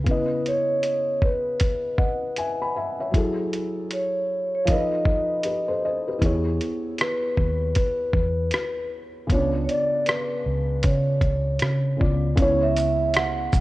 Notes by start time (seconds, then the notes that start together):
0.04 C#3 B3, kick, closed hi-hat
0.08 E4 B4 D#5
0.46 C#5, closed hi-hat
0.83 closed hi-hat
1.22 B4, kick
1.60 kick, closed hi-hat
1.98 D#5 F#5, kick
2.36 E5 G#5, closed hi-hat
2.62 G#5 B5
2.76 E5 G#5
3.00 C#5 E5
3.11 F#3 E4, kick, closed hi-hat
3.15 G#4 A4
3.53 closed hi-hat
3.91 C#5, closed hi-hat
4.55 C#5
4.65 F3 D#4 F5, kick, closed hi-hat
4.69 A4 B4 D#5
5.05 kick
5.43 G4 B4, closed hi-hat
5.68 A4 C5
5.85 C5 D#5
6.08 G4 B4
6.19 E2 B3 E4, kick, closed hi-hat
6.24 G#4 C#5
6.61 closed hi-hat
6.98 B4, cross-stick, closed hi-hat
7.37 D#2, kick
7.75 B4, kick, closed hi-hat
8.13 E2, kick
8.51 cross-stick, closed hi-hat
9.27 C#2 C#3 B3, kick, closed hi-hat
9.31 D4 F4 C#5
9.64 C#5
9.69 D5, closed hi-hat
10.06 B4, cross-stick, closed hi-hat
10.46 C#2
10.83 C#3 C#5, kick, closed hi-hat
11.21 C#2, kick, closed hi-hat
11.59 C#3, cross-stick, closed hi-hat
11.97 C#3 B3 F4 D5
12.01 C#2, kick
12.36 C#2 C#3 B3 C#5, kick, closed hi-hat
12.40 E4 C#5
12.63 E5
12.77 closed hi-hat, shaker
13.14 F#5, cross-stick, closed hi-hat
13.53 B1, kick, shaker